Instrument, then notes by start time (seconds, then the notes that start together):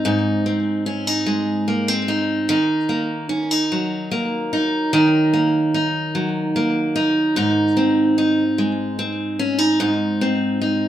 steel-string acoustic guitar
Already playing: G#3 C4
0.05 G#2 D#4
0.46 C4
0.86 C#4
1.07 D#4
1.26 G#3
1.68 A#3
1.88 C4
2.08 D#4
2.49 D#3 D#4
2.89 A#3
3.29 C#4
3.51 D#4
3.72 F#3
4.11 A#3
4.53 D#4
4.93 D#3 D#4
5.33 A#3
5.74 D#4
6.15 F#3
6.56 A#3
6.96 D#4
7.36 G#2 D#4
7.77 C4
8.18 D#4
8.58 G#3
8.99 C4
9.39 C#4
9.58 D#4
9.80 G#2 D#4
10.21 C4
10.61 D#4